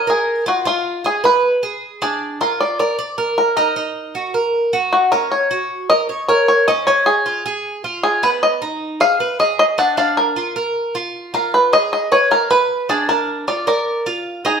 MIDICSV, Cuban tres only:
0, 0, Header, 1, 2, 480
1, 0, Start_track
1, 0, Tempo, 388350
1, 815, Time_signature, 4, 2, 24, 8
1, 18046, End_track
2, 0, Start_track
2, 0, Title_t, "Cuban tres"
2, 0, Program_c, 0, 25
2, 89, Note_on_c, 0, 70, 63
2, 557, Note_off_c, 0, 70, 0
2, 570, Note_on_c, 0, 65, 75
2, 794, Note_off_c, 0, 65, 0
2, 808, Note_on_c, 0, 65, 69
2, 1276, Note_off_c, 0, 65, 0
2, 1291, Note_on_c, 0, 68, 56
2, 1525, Note_off_c, 0, 68, 0
2, 1530, Note_on_c, 0, 71, 67
2, 1997, Note_off_c, 0, 71, 0
2, 2013, Note_on_c, 0, 68, 67
2, 2479, Note_off_c, 0, 68, 0
2, 2494, Note_on_c, 0, 62, 80
2, 2959, Note_off_c, 0, 62, 0
2, 2976, Note_on_c, 0, 65, 66
2, 3440, Note_off_c, 0, 65, 0
2, 3454, Note_on_c, 0, 70, 63
2, 3686, Note_off_c, 0, 70, 0
2, 3691, Note_on_c, 0, 74, 65
2, 3924, Note_off_c, 0, 74, 0
2, 3930, Note_on_c, 0, 70, 65
2, 4396, Note_off_c, 0, 70, 0
2, 4410, Note_on_c, 0, 63, 78
2, 4635, Note_off_c, 0, 63, 0
2, 4650, Note_on_c, 0, 63, 61
2, 5117, Note_off_c, 0, 63, 0
2, 5128, Note_on_c, 0, 66, 54
2, 5363, Note_off_c, 0, 66, 0
2, 5367, Note_on_c, 0, 70, 57
2, 5835, Note_off_c, 0, 70, 0
2, 5848, Note_on_c, 0, 66, 63
2, 6315, Note_off_c, 0, 66, 0
2, 6326, Note_on_c, 0, 61, 68
2, 6795, Note_off_c, 0, 61, 0
2, 6807, Note_on_c, 0, 66, 62
2, 7275, Note_off_c, 0, 66, 0
2, 7289, Note_on_c, 0, 70, 62
2, 7523, Note_off_c, 0, 70, 0
2, 7530, Note_on_c, 0, 73, 57
2, 7764, Note_off_c, 0, 73, 0
2, 7775, Note_on_c, 0, 70, 68
2, 8239, Note_off_c, 0, 70, 0
2, 8255, Note_on_c, 0, 61, 79
2, 8483, Note_off_c, 0, 61, 0
2, 8498, Note_on_c, 0, 61, 71
2, 8961, Note_off_c, 0, 61, 0
2, 8970, Note_on_c, 0, 65, 60
2, 9204, Note_off_c, 0, 65, 0
2, 9216, Note_on_c, 0, 68, 71
2, 9680, Note_off_c, 0, 68, 0
2, 9692, Note_on_c, 0, 65, 61
2, 10159, Note_off_c, 0, 65, 0
2, 10172, Note_on_c, 0, 59, 73
2, 10638, Note_off_c, 0, 59, 0
2, 10651, Note_on_c, 0, 63, 60
2, 11118, Note_off_c, 0, 63, 0
2, 11128, Note_on_c, 0, 68, 65
2, 11364, Note_off_c, 0, 68, 0
2, 11373, Note_on_c, 0, 71, 61
2, 11606, Note_off_c, 0, 71, 0
2, 11613, Note_on_c, 0, 68, 62
2, 12079, Note_off_c, 0, 68, 0
2, 12088, Note_on_c, 0, 62, 80
2, 12313, Note_off_c, 0, 62, 0
2, 12327, Note_on_c, 0, 62, 68
2, 12796, Note_off_c, 0, 62, 0
2, 12810, Note_on_c, 0, 65, 57
2, 13045, Note_off_c, 0, 65, 0
2, 13051, Note_on_c, 0, 70, 64
2, 13518, Note_off_c, 0, 70, 0
2, 13533, Note_on_c, 0, 65, 65
2, 13999, Note_off_c, 0, 65, 0
2, 14013, Note_on_c, 0, 65, 67
2, 14479, Note_off_c, 0, 65, 0
2, 14496, Note_on_c, 0, 68, 69
2, 14961, Note_off_c, 0, 68, 0
2, 14975, Note_on_c, 0, 71, 58
2, 15208, Note_off_c, 0, 71, 0
2, 15216, Note_on_c, 0, 77, 55
2, 15448, Note_off_c, 0, 77, 0
2, 15455, Note_on_c, 0, 71, 69
2, 15920, Note_off_c, 0, 71, 0
2, 15936, Note_on_c, 0, 62, 76
2, 16163, Note_off_c, 0, 62, 0
2, 16177, Note_on_c, 0, 62, 65
2, 16641, Note_off_c, 0, 62, 0
2, 16658, Note_on_c, 0, 65, 55
2, 16889, Note_off_c, 0, 65, 0
2, 16897, Note_on_c, 0, 70, 68
2, 17361, Note_off_c, 0, 70, 0
2, 17383, Note_on_c, 0, 65, 67
2, 17844, Note_off_c, 0, 65, 0
2, 17858, Note_on_c, 0, 63, 77
2, 18046, Note_off_c, 0, 63, 0
2, 18046, End_track
0, 0, End_of_file